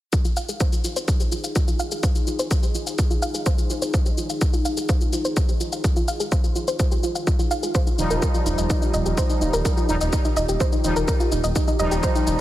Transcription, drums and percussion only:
0.13 kick, shaker
0.25 shaker
0.37 shaker
0.49 shaker
0.60 kick, shaker
0.72 shaker
0.84 shaker
0.96 shaker
1.08 kick, shaker
1.20 shaker
1.32 shaker
1.44 shaker
1.56 kick, shaker
1.68 shaker
1.79 shaker
1.91 shaker
2.03 kick, shaker
2.15 shaker
2.27 shaker
2.39 shaker
2.51 kick, shaker
2.63 shaker
2.75 shaker
2.87 shaker
2.99 kick, shaker
3.11 shaker
3.22 shaker
3.34 shaker
3.46 kick, shaker
3.58 shaker
3.70 shaker
3.82 shaker
3.94 kick, shaker
4.06 shaker
4.18 shaker
4.30 shaker
4.41 kick, shaker
4.53 shaker
4.65 shaker
4.77 shaker
4.89 kick, shaker
5.01 shaker
5.13 shaker
5.25 shaker
5.37 kick, shaker
5.49 shaker
5.60 shaker
5.72 shaker
5.84 kick, shaker
5.96 shaker
6.08 shaker
6.20 shaker
6.32 kick, shaker
6.44 shaker
6.56 shaker
6.68 shaker
6.79 kick, shaker
6.92 shaker
7.03 shaker
7.15 shaker
7.27 kick, shaker
7.39 shaker
7.51 shaker
7.63 shaker
7.75 kick, shaker
7.87 shaker
7.99 shaker
8.11 shaker
8.22 kick, shaker
8.34 shaker
8.46 shaker
8.58 shaker
8.70 kick, shaker
8.82 shaker
8.94 shaker
9.06 shaker
9.18 kick, shaker
9.30 shaker
9.41 shaker
9.53 shaker
9.65 kick, shaker
9.77 shaker
9.89 shaker
10.01 shaker
10.13 kick, shaker
10.25 shaker
10.37 shaker
10.49 shaker
10.60 kick, shaker
10.72 shaker
10.84 shaker
10.96 shaker
11.08 kick, shaker
11.20 shaker
11.32 shaker
11.44 shaker
11.56 kick, shaker
11.68 shaker
11.79 shaker
11.92 shaker
12.03 kick, shaker
12.15 shaker
12.27 shaker

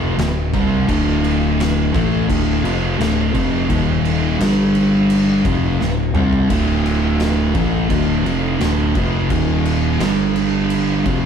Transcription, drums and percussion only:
0.19 snare, crash
0.54 kick, crash
0.89 kick, crash
1.24 crash
1.60 snare, crash
1.94 kick, crash
2.30 kick, crash
2.65 crash
3.01 snare, crash
3.35 kick, crash
3.70 kick, crash
4.05 crash
4.40 snare, crash
4.75 crash
5.10 crash
5.45 kick, crash
5.81 snare
6.15 mid tom
6.33 floor tom
6.50 kick, crash
6.86 crash
7.20 snare, crash
7.55 kick, crash
7.90 kick, crash
8.26 crash
8.60 snare, crash
8.95 kick, crash
9.30 kick, crash
9.65 crash
10.00 snare, crash
10.36 crash
10.70 crash
11.05 kick, crash

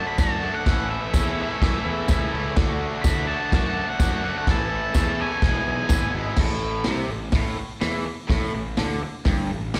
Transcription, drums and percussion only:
0.18 kick, snare, tambourine, crash
0.66 kick, snare, crash
1.14 kick, snare, tambourine, crash
1.62 kick, snare, crash
2.08 kick, snare, tambourine, crash
2.56 kick, snare, crash
3.04 kick, snare, tambourine, crash
3.52 kick, snare, crash
4.00 kick, snare, tambourine, crash
4.47 kick, snare, crash
4.94 kick, snare, tambourine, crash
5.42 kick, snare, crash
5.89 kick, snare, tambourine, crash
6.37 kick, snare, crash
6.84 snare, open hi-hat
7.32 kick, snare, open hi-hat
7.81 snare, open hi-hat
8.30 kick, snare, open hi-hat
8.77 snare, open hi-hat
9.25 kick, snare, open hi-hat
9.74 snare, open hi-hat

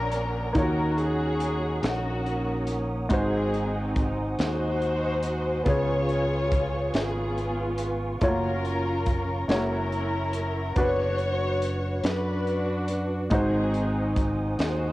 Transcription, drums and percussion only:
0.12 closed hi-hat
0.55 kick, closed hi-hat
0.98 closed hi-hat
1.40 closed hi-hat
1.83 snare, closed hi-hat
2.26 closed hi-hat
2.67 closed hi-hat
3.10 kick, closed hi-hat
3.54 closed hi-hat
3.96 kick, closed hi-hat
4.39 snare, closed hi-hat
4.82 closed hi-hat
5.23 closed hi-hat
5.66 kick, closed hi-hat
6.09 closed hi-hat
6.52 kick, closed hi-hat
6.94 snare, closed hi-hat
7.38 closed hi-hat
7.78 closed hi-hat
8.21 kick, closed hi-hat
8.65 closed hi-hat
9.06 kick, closed hi-hat
9.49 snare, closed hi-hat
9.92 closed hi-hat
10.33 closed hi-hat
10.76 kick, closed hi-hat
11.18 closed hi-hat
11.62 closed hi-hat
12.04 snare, closed hi-hat
12.47 closed hi-hat
12.88 closed hi-hat
13.31 kick, closed hi-hat
13.74 closed hi-hat
14.16 kick, closed hi-hat
14.59 snare, closed hi-hat

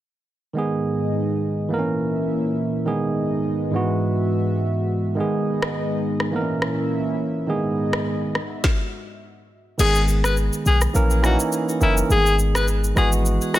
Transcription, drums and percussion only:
5.62 cross-stick
6.20 cross-stick
6.62 cross-stick
7.93 cross-stick
8.35 cross-stick
8.64 kick, snare
9.79 crash, shaker
9.95 shaker
10.08 shaker
10.24 cross-stick, shaker
10.37 shaker
10.53 shaker
10.66 shaker
10.81 cross-stick, shaker
10.95 shaker
11.10 shaker
11.24 cross-stick, shaker
11.40 shaker
11.52 shaker
11.69 shaker
11.81 shaker
11.97 shaker
12.10 shaker
12.26 shaker
12.39 shaker
12.55 cross-stick, shaker
12.68 shaker
12.84 shaker
12.97 cross-stick, shaker
13.12 shaker
13.26 shaker
13.41 shaker
13.54 cross-stick, shaker

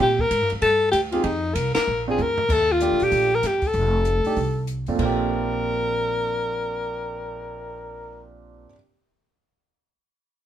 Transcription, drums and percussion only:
0.19 kick
0.31 kick, hi-hat pedal, ride
0.50 ride
0.62 kick, ride
0.93 kick, hi-hat pedal, ride
1.12 ride
1.24 kick, ride
1.55 kick, hi-hat pedal, ride
1.75 snare, ride
2.18 floor tom, hi-hat pedal
2.38 floor tom
2.49 kick, crash
2.81 closed hi-hat
3.00 open hi-hat
3.12 kick, open hi-hat
3.43 snare, closed hi-hat
3.62 kick, open hi-hat
3.73 kick, open hi-hat
4.05 closed hi-hat
4.25 open hi-hat
4.36 kick, open hi-hat
4.67 closed hi-hat
4.86 open hi-hat
4.99 kick, crash
5.18 cymbal swell

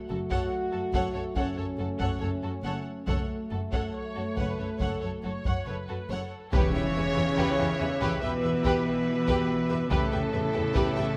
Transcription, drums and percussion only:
0.31 taiko
0.94 taiko
1.36 taiko
2.00 taiko
3.07 taiko
3.73 taiko
4.37 taiko
4.80 taiko
5.45 taiko
6.53 taiko
7.39 taiko
8.01 taiko
8.64 taiko
9.28 taiko
9.91 taiko
10.75 taiko

